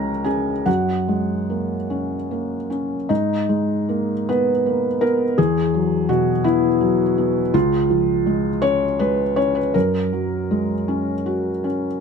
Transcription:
0.00 0.63 C#2 medium
0.00 0.70 F3 soft
0.00 0.69 G#3 soft
0.00 0.25 C#4 medium
0.00 0.23 A#4 medium
0.00 0.70 C#5 medium
0.00 0.26 A#5 medium
0.24 0.66 C#4 soft
0.24 0.64 G#4 soft
0.24 0.66 G#5 medium
0.66 3.05 F#2 soft
0.66 2.66 F#4 soft
0.66 2.69 F#5 medium
1.08 1.74 G#3 soft
1.50 2.14 A#3 soft
1.90 2.54 C#4 soft
2.31 2.95 A#3 soft
2.70 3.10 C#4 soft
3.09 5.33 G#2 soft
3.09 4.28 D#4 medium
3.49 4.13 G#3 soft
3.89 4.50 A#3 soft
4.29 4.87 B3 soft
4.29 5.02 B4 medium
4.66 5.23 A#3 soft
5.01 5.37 B3 soft
5.01 5.37 A#4 medium
5.38 7.51 E2 medium
5.38 6.09 G#4 medium
5.74 6.31 F#3 soft
6.09 6.67 B2 soft
6.09 6.45 F#4 medium
6.44 7.03 B3 soft
6.44 7.54 E4 medium
6.81 7.39 F#3 soft
7.18 7.54 B3 soft
7.54 9.71 C#2 medium
7.54 8.63 F4 medium
7.90 8.48 F3 soft
8.26 8.85 G#3 soft
8.62 9.22 C#4 soft
8.62 8.99 C#5 medium
8.99 9.60 G#3 soft
8.99 9.37 B4 medium
9.36 9.75 C#4 soft
9.36 9.55 C#5 medium
9.55 9.74 B4 medium
9.74 11.99 F#2 soft
9.74 11.65 A#4 medium
10.13 10.74 F#3 soft
10.51 11.12 G#3 soft
10.88 11.49 C#4 soft
11.26 11.87 F#4 soft
11.64 12.00 C#4 soft

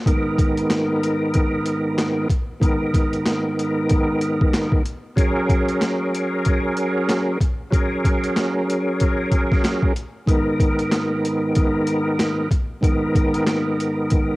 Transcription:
0.05 2.27 G#2 medium
0.05 2.27 D#3 medium
0.05 2.28 B3 medium
0.05 2.28 A#4 loud
0.05 kick loud
0.05 closed hi-hat medium
0.39 kick loud
0.39 closed hi-hat medium
0.58 closed hi-hat medium
0.70 snare loud
0.70 snare medium
0.70 closed hi-hat medium
1.04 closed hi-hat medium
1.34 kick medium
1.34 closed hi-hat medium
1.66 closed hi-hat medium
1.98 snare loud
1.98 snare medium
1.98 closed hi-hat medium
2.30 kick medium
2.30 closed hi-hat medium
2.60 4.82 G#2 medium
2.60 4.82 D#3 medium
2.60 4.83 B3 medium
2.60 4.83 A#4 loud
2.60 kick loud
2.60 closed hi-hat medium
2.94 kick loud
2.94 closed hi-hat medium
3.13 closed hi-hat medium
3.26 snare loud
3.26 snare medium
3.26 closed hi-hat medium
3.59 closed hi-hat medium
3.89 kick loud
3.89 closed hi-hat medium
4.21 closed hi-hat medium
4.41 kick medium
4.53 snare loud
4.53 snare medium
4.53 closed hi-hat medium
4.72 kick medium
4.86 closed hi-hat medium
5.16 7.37 F#3 medium
5.16 7.38 C#4 medium
5.16 7.38 G#4 medium
5.16 7.39 A#4 loud
5.16 kick loud
5.16 closed hi-hat medium
5.49 kick loud
5.49 closed hi-hat medium
5.68 closed hi-hat medium
5.81 snare loud
5.81 snare medium
5.81 closed hi-hat medium
6.14 closed hi-hat medium
6.45 kick loud
6.45 closed hi-hat medium
6.77 closed hi-hat medium
7.09 snare loud
7.09 snare medium
7.09 closed hi-hat medium
7.40 kick medium
7.40 closed hi-hat medium
7.71 9.92 F#3 medium
7.71 9.93 C#4 medium
7.71 9.93 G#4 medium
7.71 9.94 A#4 loud
7.71 kick loud
7.71 closed hi-hat medium
8.05 kick loud
8.05 closed hi-hat medium
8.24 closed hi-hat medium
8.36 snare loud
8.36 snare medium
8.36 closed hi-hat medium
8.70 closed hi-hat medium
9.00 kick medium
9.00 closed hi-hat medium
9.32 kick medium
9.32 closed hi-hat medium
9.52 kick medium
9.52 snare soft
9.64 snare loud
9.64 snare medium
9.64 closed hi-hat medium
9.82 kick medium
9.96 closed hi-hat medium
10.26 12.48 G#2 medium
10.26 12.48 D#3 medium
10.26 12.49 B3 medium
10.26 12.49 A#4 loud
10.26 kick loud
10.26 closed hi-hat medium
10.60 kick loud
10.60 closed hi-hat medium
10.79 closed hi-hat medium
10.91 snare loud
10.91 snare medium
10.91 closed hi-hat medium
11.25 closed hi-hat medium
11.55 kick medium
11.55 closed hi-hat medium
11.87 closed hi-hat medium
12.19 snare loud
12.19 snare medium
12.19 closed hi-hat medium
12.51 kick medium
12.51 closed hi-hat medium
12.81 14.36 G#2 medium
12.81 14.36 D#3 medium
12.81 14.36 B3 medium
12.81 14.36 A#4 loud
12.81 kick loud
12.81 closed hi-hat medium
13.15 kick loud
13.15 closed hi-hat medium
13.34 closed hi-hat medium
13.47 snare loud
13.47 snare medium
13.47 closed hi-hat medium
13.80 closed hi-hat medium
14.10 kick loud
14.10 closed hi-hat medium

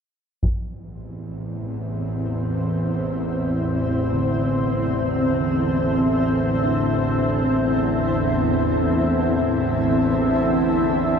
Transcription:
0.40 11.19 A1 medium
0.40 11.19 C4 medium
0.40 taiko medium
0.45 11.19 E2 medium
1.04 11.19 E4 medium
4.11 4.41 D3 medium
4.11 11.19 A4 medium
4.42 11.19 D3 soft
4.50 11.19 E5 medium
5.79 6.88 C4 medium
6.64 11.19 D4 medium

